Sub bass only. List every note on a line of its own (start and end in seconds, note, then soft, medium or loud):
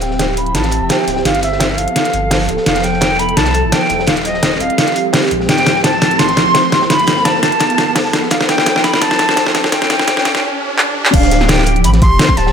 0.00 0.56 D1 medium
0.55 0.80 A1 medium
0.82 0.89 F1 medium
1.08 1.24 D1 medium
1.25 1.77 G1 medium
1.78 1.87 G1 medium
2.14 2.48 G1 loud
2.49 2.57 D1 medium
2.66 3.39 F1 medium
3.37 3.63 C2 medium
3.64 3.72 A1 medium
3.90 4.06 F1 medium
4.08 4.59 D#1 loud
4.61 4.69 D#1 medium
5.31 5.47 A#1 medium
5.49 6.21 D1 loud
6.19 6.45 A1 medium
6.46 6.54 F1 loud
6.72 6.88 D1 medium
6.90 7.42 G1 loud
7.43 7.51 G1 medium
7.78 8.12 G1 loud
8.13 8.22 D1 medium
8.31 9.03 F1 loud
9.02 9.27 C2 medium
9.29 9.36 A1 medium
9.55 9.71 F1 medium
9.72 10.24 D#1 loud
10.25 10.34 D#1 medium
11.14 11.86 D1 loud
11.84 12.10 A1 medium
12.11 12.19 F1 medium
12.37 12.52 D1 medium